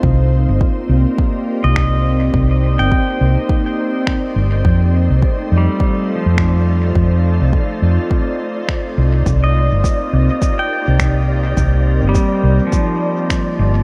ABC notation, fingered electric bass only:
X:1
M:4/4
L:1/16
Q:"Swing 16ths" 1/4=104
K:Cdor
V:1 name="Fingered electric bass" clef=bass
C,,3 G,,, z2 C,, z4 C,,4- C,, | C,,3 G,,, z2 C,, z6 z G,,,2 | F,,3 C,, z2 F,, z4 F,,4- F,, | F,,3 C,, z2 F,, z6 z C,,2 |
C,,3 G,,, z2 C,, z4 C,,4- C,, | C,,3 G,,, z2 C,, z6 z G,,,2 |]